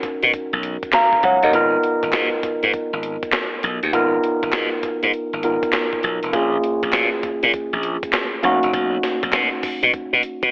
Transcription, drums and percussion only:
0.03 kick medium
0.03 closed hi-hat medium
0.23 closed hi-hat medium
0.33 kick medium
0.33 closed hi-hat medium
0.63 closed hi-hat medium
0.83 kick loud
0.83 closed hi-hat medium
0.93 snare loud
0.93 clap medium
0.93 closed hi-hat medium
1.13 kick medium
1.23 kick medium
1.23 closed hi-hat medium
1.43 closed hi-hat soft
1.53 kick loud
1.53 closed hi-hat medium
1.83 closed hi-hat medium
2.03 kick medium
2.03 closed hi-hat soft
2.13 snare loud
2.13 clap medium
2.13 closed hi-hat medium
2.43 kick loud
2.43 closed hi-hat medium
2.63 closed hi-hat medium
2.73 kick medium
2.73 closed hi-hat medium
3.03 closed hi-hat medium
3.23 kick loud
3.23 closed hi-hat medium
3.33 snare loud
3.33 clap medium
3.33 closed hi-hat medium
3.63 closed hi-hat medium
3.83 closed hi-hat soft
3.93 kick loud
3.93 closed hi-hat medium
4.24 closed hi-hat medium
4.43 kick medium
4.43 closed hi-hat soft
4.53 snare loud
4.53 clap medium
4.53 closed hi-hat medium
4.83 kick medium
4.83 closed hi-hat medium
5.03 closed hi-hat medium
5.13 closed hi-hat medium
5.43 closed hi-hat medium
5.63 kick loud
5.63 closed hi-hat medium
5.73 snare loud
5.73 clap medium
5.73 closed hi-hat medium
5.93 kick medium
6.03 closed hi-hat medium
6.23 closed hi-hat medium
6.33 kick loud
6.33 closed hi-hat medium
6.64 closed hi-hat medium
6.83 kick medium
6.83 closed hi-hat soft
6.93 snare loud
6.93 clap medium
6.93 closed hi-hat medium
7.23 kick medium
7.23 closed hi-hat medium
7.43 closed hi-hat medium
7.54 kick medium
7.54 closed hi-hat medium
7.83 closed hi-hat medium
8.03 kick loud
8.03 closed hi-hat medium
8.13 snare loud
8.13 clap medium
8.13 closed hi-hat medium
8.43 closed hi-hat medium
8.63 closed hi-hat soft
8.73 kick loud
8.73 closed hi-hat medium
9.03 snare medium
9.03 closed hi-hat medium
9.23 kick loud
9.23 closed hi-hat soft
9.33 snare loud
9.33 clap medium
9.33 closed hi-hat medium
9.63 kick loud
9.63 open hi-hat medium
9.83 closed hi-hat medium
9.93 kick medium
9.93 closed hi-hat medium
10.23 closed hi-hat medium
10.43 kick loud
10.43 closed hi-hat medium

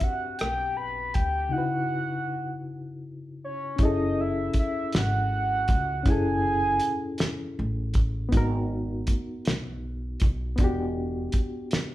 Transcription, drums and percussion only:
0.00 kick medium
0.00 closed hi-hat medium
0.39 cross-stick loud
0.39 closed hi-hat medium
1.14 kick medium
1.14 closed hi-hat medium
3.78 kick loud
3.78 closed hi-hat medium
4.53 kick medium
4.53 closed hi-hat medium
4.93 snare loud
4.93 closed hi-hat medium
5.68 kick loud
5.68 closed hi-hat medium
6.06 kick loud
6.06 closed hi-hat medium
6.80 closed hi-hat medium
7.18 snare loud
7.18 closed hi-hat medium
7.94 kick loud
7.94 closed hi-hat medium
8.32 kick loud
8.32 closed hi-hat medium
9.07 kick medium
9.07 closed hi-hat medium
9.45 snare loud
9.45 closed hi-hat medium
10.20 kick loud
10.20 closed hi-hat medium
10.58 kick loud
10.58 closed hi-hat medium
11.32 kick medium
11.32 closed hi-hat medium
11.71 snare loud
11.71 closed hi-hat medium

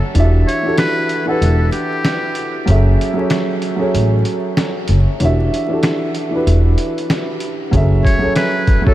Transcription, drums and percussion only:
0.15 closed hi-hat medium
0.49 closed hi-hat medium
0.77 snare loud
0.77 snare medium
0.77 closed hi-hat medium
1.09 closed hi-hat medium
1.42 closed hi-hat loud
1.72 closed hi-hat medium
2.05 snare loud
2.05 snare medium
2.05 closed hi-hat medium
2.35 closed hi-hat medium
2.67 closed hi-hat medium
3.01 closed hi-hat medium
3.30 snare loud
3.30 snare medium
3.30 closed hi-hat loud
3.62 closed hi-hat medium
3.95 closed hi-hat loud
4.25 closed hi-hat medium
4.57 snare loud
4.57 snare medium
4.57 closed hi-hat medium
4.88 closed hi-hat medium
5.20 closed hi-hat medium
5.54 closed hi-hat medium
5.83 snare loud
5.83 snare medium
5.83 closed hi-hat loud
6.15 closed hi-hat medium
6.47 closed hi-hat loud
6.78 closed hi-hat medium
6.98 closed hi-hat soft
7.10 snare loud
7.10 snare medium
7.10 closed hi-hat medium
7.40 closed hi-hat medium
7.73 kick loud
7.73 closed hi-hat medium
8.05 kick medium
8.05 closed hi-hat medium
8.36 snare loud
8.36 snare medium
8.36 closed hi-hat loud
8.67 kick medium
8.67 closed hi-hat medium
8.87 kick loud

